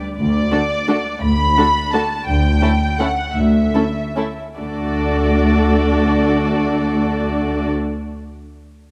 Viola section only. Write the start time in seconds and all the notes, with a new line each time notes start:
0.52 A3 D4
0.87 A3 D4
1.58 A3 D4
1.93 A3 D4
2.61 A3 C#4
2.99 A3 C#4
3.74 A3 C#4
4.16 A3 C#4
4.58 A3 D4